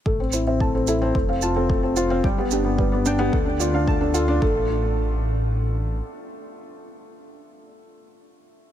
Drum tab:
SH |-x-x-x-x|-x-x-x-x|--------|--------|
BD |o-o-o-o-|o-o-o-o-|o-------|--------|